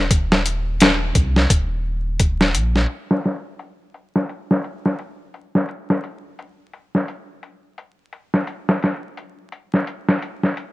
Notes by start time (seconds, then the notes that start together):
Already playing: D#1
0.11 kick, closed hi-hat
0.32 snare
0.46 closed hi-hat
0.80 snare, closed hi-hat
1.15 C2, kick, closed hi-hat
1.36 snare
1.50 D#1, kick, closed hi-hat
2.20 kick, closed hi-hat
2.41 snare
2.55 A#1, closed hi-hat
2.76 snare
2.89 closed hi-hat
3.11 snare
3.24 snare, closed hi-hat
3.59 closed hi-hat
3.94 closed hi-hat
4.16 snare
4.29 closed hi-hat
4.51 snare
4.64 closed hi-hat
4.86 snare
4.99 closed hi-hat
5.34 closed hi-hat
5.55 snare
5.69 closed hi-hat
5.90 snare
6.04 closed hi-hat
6.39 closed hi-hat
6.73 closed hi-hat
6.95 snare
7.08 closed hi-hat
7.43 closed hi-hat
7.78 closed hi-hat
8.13 closed hi-hat
8.34 snare
8.47 closed hi-hat
8.69 snare
8.83 snare, closed hi-hat
9.17 closed hi-hat
9.52 closed hi-hat
9.74 snare
9.87 closed hi-hat
10.09 snare
10.22 closed hi-hat
10.43 snare
10.57 closed hi-hat